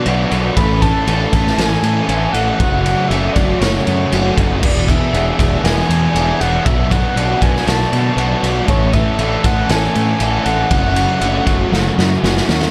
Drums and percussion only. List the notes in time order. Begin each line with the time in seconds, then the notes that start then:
0.06 ride
0.31 ride
0.57 kick, ride
0.82 kick, ride
1.07 ride
1.33 kick, ride
1.47 snare
1.58 snare, ride
1.83 ride
2.09 ride
2.34 ride
2.60 kick, ride
2.86 ride
3.11 ride
3.36 kick, ride
3.61 snare, ride
3.87 ride
4.12 ride
4.38 kick, ride
4.63 kick, crash
4.89 kick, ride
5.14 ride
5.39 kick, ride
5.65 snare, ride
5.90 ride
6.16 ride
6.41 ride
6.66 kick, ride
6.91 kick, ride
7.17 ride
7.42 kick, ride
7.56 snare
7.67 snare, ride
7.93 ride
8.18 ride
8.44 ride
8.68 kick, ride
8.93 kick, ride
9.19 ride
9.44 kick, ride
9.69 snare, ride
9.95 ride
10.20 ride
10.46 ride
10.71 kick, ride
10.96 ride
11.21 ride
11.47 kick, ride
11.73 snare
11.99 snare
12.24 snare
12.37 snare
12.49 snare
12.62 snare